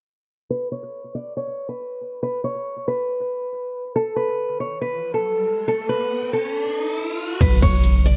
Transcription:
0.50 B4
0.72 C#5
1.15 D5
1.37 C#5
1.69 B4
2.23 B4
2.44 C#5
2.88 B4
3.96 A4, riser
4.16 B4
4.60 C#5
4.81 B4
5.14 A4
5.68 A4
5.89 B4
6.33 A4
7.41 B1 B4, kick, closed hi-hat, crash, impact
7.62 B1 C#5, kick, closed hi-hat
7.83 closed hi-hat
8.06 D5, closed hi-hat

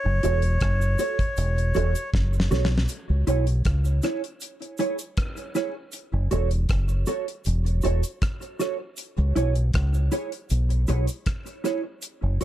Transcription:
Already playing: C#5
0.06 F#1
0.23 E1 F#4 A4 C#5, closed hi-hat, cabasa
0.42 closed hi-hat
0.60 F#1, kick, cross-stick, closed hi-hat
0.81 cabasa
0.99 F#4 A4 C#5, closed hi-hat, cabasa
1.19 kick, closed hi-hat
1.37 E1, closed hi-hat, cabasa
1.58 closed hi-hat
1.74 E1 F#4 A4 C#5, closed hi-hat, cabasa
1.95 closed hi-hat, cabasa
2.14 F#1, kick, snare
2.33 cabasa
2.40 snare
2.51 B1 F#4 A4 C#5, snare, cabasa
2.65 snare
2.71 muted clean electric guitar stroke
2.78 snare
2.88 closed hi-hat, cabasa
3.10 C#2
3.27 B1 E4 G#4 C#5, closed hi-hat, cabasa
3.47 closed hi-hat
3.65 C#2, kick, cross-stick, closed hi-hat
3.85 cabasa
4.02 E4 G#4 C#5, cross-stick, closed hi-hat, cabasa
4.24 closed hi-hat
4.41 closed hi-hat, cabasa
4.62 closed hi-hat
4.78 E4 G#4 C#5, closed hi-hat, cabasa
4.99 closed hi-hat, cabasa
5.17 kick, cross-stick, closed hi-hat
5.37 closed hi-hat, cabasa
5.55 E4 G#4 C#5, cross-stick, closed hi-hat, cabasa
5.92 closed hi-hat, cabasa
6.13 F#1
6.31 E1 F#4 A4 C#5, closed hi-hat, cabasa
6.51 closed hi-hat
6.69 F#1, kick, cross-stick, closed hi-hat
6.88 cabasa
7.06 F#4 A4 C#5, closed hi-hat, cabasa
7.28 closed hi-hat
7.45 E1, closed hi-hat, cabasa
7.66 closed hi-hat
7.82 E1 F#4 A4 C#5, closed hi-hat, cabasa
8.03 closed hi-hat, cabasa
8.22 kick, cross-stick, closed hi-hat
8.41 closed hi-hat, cabasa
8.59 F#4 A4 C#5, cross-stick, closed hi-hat, cabasa
8.80 muted clean electric guitar stroke
8.97 closed hi-hat, cabasa
9.18 C#2
9.36 B1 E4 G#4 C#5, closed hi-hat, cabasa
9.55 closed hi-hat
9.74 C#2, kick, cross-stick, closed hi-hat
9.94 cabasa
10.12 E4 G#4 C#5, closed hi-hat, cabasa
10.32 closed hi-hat
10.50 B1, closed hi-hat, cabasa
10.70 closed hi-hat
10.87 B1 E4 G#4 C#5, closed hi-hat, cabasa
11.07 muted clean electric guitar stroke, closed hi-hat, cabasa
11.26 kick, cross-stick, closed hi-hat
11.46 closed hi-hat, cabasa
11.64 E4 G#4 C#5, cross-stick, closed hi-hat, cabasa
11.84 muted clean electric guitar stroke
12.02 closed hi-hat, cabasa
12.23 F#1
12.41 F#4, closed hi-hat

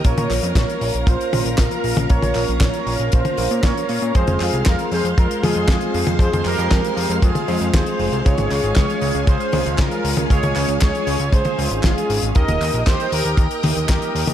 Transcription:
Already playing: A#4
0.04 A#1 A#3 C#4 F4 A#4 C#5 F5 A#5, kick, closed hi-hat
0.17 A#2, closed hi-hat, high tom
0.30 A#1, clap, open hi-hat
0.43 F2, closed hi-hat
0.55 A#1 A#4 C#5, kick, snare, clap, closed hi-hat
0.69 closed hi-hat
0.81 A#1, open hi-hat
0.94 A#1, closed hi-hat
1.07 A#1 F4 C5, kick, closed hi-hat
1.21 closed hi-hat
1.33 A#1 A#3 C#4 F4 A#4, open hi-hat, high tom
1.45 A#1, closed hi-hat
1.58 A#1 F4 A#4, kick, snare, clap, closed hi-hat
1.71 closed hi-hat
1.84 A#1, open hi-hat
1.97 A#1, closed hi-hat, high tom
2.10 A#1 A#3 C#4 F4 A#4 C#5, kick, closed hi-hat
2.22 A#1, closed hi-hat, high tom
2.35 A#1, clap, open hi-hat
2.48 A#1, closed hi-hat
2.61 A#1 A#4 C#5, kick, snare, clap, closed hi-hat
2.73 closed hi-hat
2.87 A#1, open hi-hat
2.99 A#1, closed hi-hat
3.12 A#1 F4 C5, kick, closed hi-hat
3.25 closed hi-hat, high tom
3.37 A#1 A#3 C#4 F4 A#4, open hi-hat
3.51 A#2, closed hi-hat
3.63 A#2 A#4 C#5, kick, snare, clap, closed hi-hat
3.77 closed hi-hat
3.89 A#2 A#4 C#5, open hi-hat
4.02 A#2, closed hi-hat
4.15 F2 G#3 C4 F4 G#4 C5 C6, kick, closed hi-hat
4.27 F1, closed hi-hat, high tom
4.40 F2 F4 G#4, clap, open hi-hat
4.53 C2, closed hi-hat
4.66 F2 F4 A#4, kick, snare, clap, closed hi-hat
4.79 closed hi-hat
4.92 F2 G#4 C5, open hi-hat
5.04 F2, closed hi-hat
5.17 F2 F4 A#4, kick, closed hi-hat
5.31 closed hi-hat
5.43 F2 G#3 C4 F4 G#4, open hi-hat, high tom
5.55 F2, closed hi-hat
5.68 F2 F4 G#4, kick, snare, clap, closed hi-hat
5.81 closed hi-hat
5.94 F2, open hi-hat
6.07 F2, closed hi-hat, high tom
6.19 F2 G#3 C4 F4 G#4 C5, kick, closed hi-hat
6.33 F2, closed hi-hat, high tom
6.45 F2 G4 A#4, clap, open hi-hat
6.58 F2, closed hi-hat
6.71 F2, kick, snare, clap, closed hi-hat
6.84 closed hi-hat
6.97 F2, open hi-hat
7.10 F2, closed hi-hat
7.22 F2 F4 G#4, kick, closed hi-hat
7.35 closed hi-hat, high tom
7.48 F2 G#3 C4 F4 G#4, open hi-hat
7.61 F2, closed hi-hat
7.74 D#2 G#4 C5, kick, snare, clap, closed hi-hat
7.86 closed hi-hat
7.99 F1, open hi-hat
8.12 C2, closed hi-hat
8.25 C#2 G#3 C#4 F4 G#4 C#5 G#5, kick, closed hi-hat
8.38 G#1, closed hi-hat, high tom
8.51 C#2, clap, open hi-hat
8.63 G#1, closed hi-hat
8.76 C#2 G#4 C#5, kick, snare, clap, closed hi-hat
8.90 closed hi-hat
9.01 C#2, open hi-hat
9.15 C#2, closed hi-hat
9.27 C#2 G#4 C5, kick, closed hi-hat
9.40 closed hi-hat
9.52 C#2 G#3 C#4 F4 G#4, open hi-hat, high tom
9.66 C#2, closed hi-hat
9.78 C#2 F4 A#4, kick, snare, clap, closed hi-hat
9.91 closed hi-hat
10.04 C#2, open hi-hat
10.17 C#2, closed hi-hat, high tom
10.30 C#2 G#3 C#4 F4 G#4 C#5, kick, closed hi-hat
10.43 C#2, closed hi-hat, high tom
10.56 C#2, clap, open hi-hat
10.68 C#2, closed hi-hat
10.80 C#2 G#4 C#5, kick, snare, clap, closed hi-hat
10.95 closed hi-hat
11.07 C#2, open hi-hat
11.20 C#2, closed hi-hat
11.32 C#2 G#4 C5, kick, closed hi-hat
11.45 closed hi-hat, high tom
11.58 C#2 G#3 C#4 F4 G#4, open hi-hat
11.71 G#1, closed hi-hat
11.83 G#1 F4 G#4, kick, snare, clap, closed hi-hat
11.98 closed hi-hat
12.10 G#1, open hi-hat
12.23 G#1, closed hi-hat
12.35 D#2 A#3 D#4 G4 A#4 D#5 G5 D#6, kick, closed hi-hat
12.48 D#1, closed hi-hat, high tom
12.61 D#2, clap, open hi-hat
12.74 A#1, closed hi-hat
12.87 D#2 G4 C5, kick, snare, clap, closed hi-hat
13.00 closed hi-hat
13.12 D#2 G4 A#4, open hi-hat
13.25 D#2, closed hi-hat
13.37 D#2, kick, closed hi-hat
13.51 closed hi-hat
13.63 D#2 A#3 D#4 G4 A#4, open hi-hat, high tom
13.76 D#2, closed hi-hat
13.89 D#2 G4 A#4, kick, snare, clap, closed hi-hat
14.02 closed hi-hat
14.15 D#2, open hi-hat
14.27 D#2, closed hi-hat, high tom

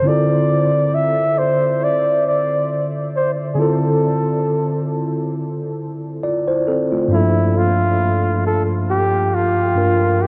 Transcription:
0.02 D3 C4 E4
0.07 F4 A4 D5
0.94 E5
1.38 C5
1.83 D5
2.27 D5
3.16 C5
3.54 D3 C4 G#4
3.58 E4 F4 A4
6.23 F4 D5
6.48 E4 C5
6.68 C4 A4
6.92 A3 F4
7.08 G2 A#3 D4
7.13 F3 E4 A4
7.57 F4
8.46 A4
8.90 G4
9.34 F4
9.75 G2 A#3 D4 F4 A#4
10.22 G4

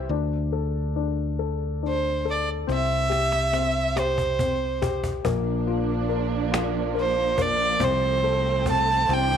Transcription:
Already playing: C4 G4 C5
0.09 D2 D4
0.52 A4
0.96 D4
1.39 A4
1.83 D4
1.88 C5
2.25 A4
2.31 D5
2.67 C2 C4, cajon slap
2.73 E5
3.10 G4, cajon slap
3.32 cajon slap
3.53 C4, cajon slap
3.96 G4 C5, cajon slap
4.18 cajon bass
4.39 C4, cajon bass
4.82 G4, cajon bass
5.04 cajon bass
5.23 A#1 F3 A#3 D4, cajon bass
5.67 F4, cajon slap
6.09 A#4, cajon slap
6.52 F4, cajon slap
6.95 A#4, cajon slap
7.00 C5
7.38 A#3 D5, cajon bass
7.79 C2 A3 C4, cajon bass
7.84 C5
8.24 A4
8.66 C4, cajon bass
8.70 A5
9.09 C2 E3 C4 D4, cajon slap
9.14 G5
9.32 cajon slap

